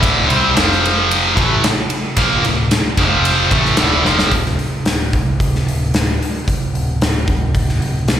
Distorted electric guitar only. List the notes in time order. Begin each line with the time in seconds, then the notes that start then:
0.01 D2 A2 D3
0.27 C3 G3 C4
0.54 F2 C3 F3
1.35 A2 E3 A3
2.17 A#2 F3 A#3
2.43 D2 A2
2.98 F2 C3 F3
3.50 A2 E3 A3
3.78 D2 A2 D3
4.05 F2 C3 F3